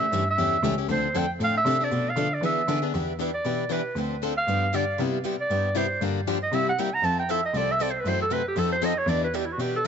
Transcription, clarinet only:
0.00 0.26 E5 loud
0.31 0.76 E5 medium
0.92 1.19 C5 medium
1.18 1.31 G5 medium
1.44 1.56 F5 medium
1.58 1.86 E5 loud
1.84 2.11 D5 medium
2.09 2.35 F5 medium
2.34 2.44 D5 medium
2.46 2.82 E5 medium
3.34 3.74 D5 medium
3.72 3.97 B4 medium
4.38 4.77 F5 loud
4.75 5.00 D5 medium
5.41 5.79 D5 medium
5.77 6.02 C5 medium
6.43 6.56 D#5 medium
6.55 6.68 E5 medium
6.69 6.82 F#5 loud
6.80 6.96 G5 medium
6.94 7.06 A#5 loud
7.05 7.19 A5 medium
7.19 7.32 G5 medium
7.31 7.45 E5 medium
7.45 7.59 D#5 medium
7.57 7.73 D5 medium
7.72 7.84 E5 loud
7.82 7.92 D5 medium
7.91 8.01 C5 medium
8.00 8.10 B4 medium
8.09 8.21 C5 medium
8.22 8.34 A4 medium
8.33 8.47 B4 medium
8.48 8.61 G4 medium
8.59 8.72 A4 medium
8.73 8.86 C5 loud
8.85 9.00 D#5 medium
8.99 9.11 C#5 medium
9.09 9.23 D5 medium
9.24 9.37 B4 medium
9.36 9.47 G4 medium
9.45 9.54 E4 medium
9.53 9.63 F#4 medium
9.61 9.75 G4 medium
9.76 9.87 A4 medium

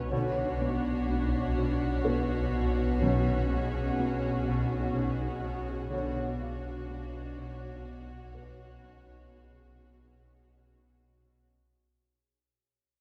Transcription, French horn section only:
0.11 0.48 D3 soft
0.11 0.48 C#5 soft
3.01 3.38 F#3 medium
3.01 3.38 C#4 medium
5.91 6.28 D3 medium
5.91 6.29 C#5 medium
8.83 9.20 F#3 soft
8.83 9.20 C#4 soft

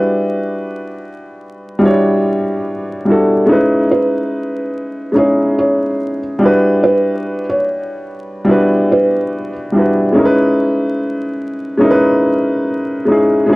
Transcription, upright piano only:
0.00 1.07 G3 medium
0.00 1.07 D4 medium
0.00 1.08 E4 medium
0.00 1.09 F#4 medium
0.00 1.10 B4 loud
1.79 2.73 G3 medium
1.79 2.73 D4 medium
1.79 2.74 E4 medium
1.84 2.75 F#4 medium
1.84 2.76 C#5 loud
3.05 3.38 G3 medium
3.05 3.39 D4 medium
3.05 3.40 E4 medium
3.10 3.40 F#4 medium
3.10 3.41 A4 medium
3.46 4.69 G#3 medium
3.46 4.70 C#4 medium
3.46 4.71 D#4 medium
3.51 4.71 E4 medium
3.51 4.72 B4 loud
5.12 6.06 G#3 medium
5.12 6.06 C#4 medium
5.12 6.07 D#4 medium
5.17 6.08 E4 medium
5.17 6.09 G#4 medium
6.39 7.74 G3 medium
6.39 7.75 D4 medium
6.39 7.76 E4 medium
6.44 7.76 F#4 medium
6.44 7.77 B4 loud
8.44 9.39 G3 medium
8.44 9.39 D4 medium
8.44 9.40 E4 medium
8.49 9.41 F#4 medium
8.49 9.42 B4 medium
9.72 10.05 G3 medium
9.72 10.06 D4 medium
9.72 10.06 E4 medium
9.77 10.07 F#4 medium
9.77 10.08 B4 medium
10.12 11.36 G#3 medium
10.12 11.37 C#4 medium
10.12 11.37 D#4 medium
10.17 11.38 E4 medium
10.17 10.24 A#4 medium
10.25 11.42 B4 loud
11.78 12.72 G#3 medium
11.78 12.73 C#4 medium
11.78 12.73 D#4 medium
11.82 12.74 E4 medium
11.82 11.90 A#4 medium
11.91 12.78 B4 loud
13.05 13.38 G#3 medium
13.05 13.39 C#4 medium
13.05 13.39 D#4 medium
13.10 13.40 E4 medium
13.10 13.41 G#4 medium
13.46 13.56 G#3 medium
13.46 13.56 C#4 medium
13.46 13.56 D#4 medium
13.51 13.56 E4 medium
13.51 13.56 G#4 loud

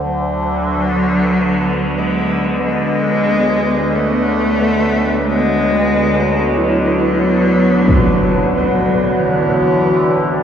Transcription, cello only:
0.02 1.99 F#3 medium
1.97 2.62 G#3 medium
2.63 3.96 G#3 loud
3.94 5.27 A3 loud
5.26 6.59 G#3 loud
6.58 8.53 F#3 loud
8.54 9.21 F#3 medium
9.20 10.43 E3 medium

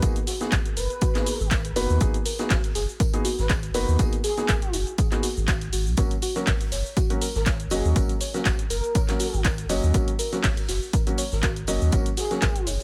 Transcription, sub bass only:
0.02 0.13 G#1 loud
0.52 0.62 G#1 medium
0.77 0.87 F#1 loud
1.40 1.72 G#1 medium
1.76 1.86 F#1 medium
1.90 1.98 D#2 loud
2.01 2.11 G#1 loud
2.50 2.61 G#1 medium
2.75 2.85 F#1 loud
3.38 3.70 G#1 medium
3.74 3.85 F#1 medium
3.88 3.96 D#2 loud
3.99 4.09 G#1 loud
4.49 4.59 G#1 medium
4.74 4.84 F#1 loud
5.37 5.68 G#1 medium
5.73 5.88 G#1 loud
5.86 5.95 B1 medium
5.98 6.08 G#1 loud
6.47 6.57 G#1 medium
6.72 6.82 F#1 loud
7.35 7.67 G#1 medium
7.71 7.81 F#1 medium
7.85 7.93 D#2 loud
7.96 8.06 G#1 loud
8.46 8.56 G#1 medium
8.70 8.81 F#1 loud
9.33 9.65 G#1 medium
9.69 9.80 F#1 medium
9.83 9.92 D#2 loud
9.94 10.05 G#1 loud
10.44 10.54 G#1 medium
10.69 10.79 F#1 loud
11.32 11.63 G#1 medium
11.68 11.78 F#1 medium
11.81 11.90 D#2 loud
11.93 12.03 G#1 loud
12.42 12.52 G#1 medium
12.67 12.77 F#1 loud

